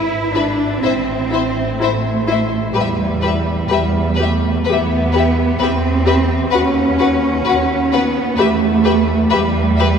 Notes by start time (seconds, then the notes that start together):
Already playing: G#1 E4
0.33 D4 E4 B4 E5
0.82 A1 C4 E4 C5 E5
1.31 E4 C5 E5
1.79 A1 A3 E4 C5 E5
2.27 E4 C5 E5
2.74 E2 G3 G4 B4
2.80 E5
3.22 G4 B4
3.26 E5
3.69 E2 G4 B4
3.73 E5
4.15 A3 G4 B4
4.23 E5
4.65 B3 B4
4.69 E2 G4 E5
5.13 G4 B4 E5
5.59 E2 C4 G4 B4 E5
6.06 G4 B4 E5
6.51 D#2 C#4 F#4 B4 F#5
6.98 F#4 B4 F#5
7.45 D#2 F#4 B4 F#5
7.93 B3 F#4 B4 F#5
8.37 E2 A3 G4 B4 E5
8.84 G4 B4 E5
9.30 E2 G3 G4 B4 E5
9.78 G4 B4 E5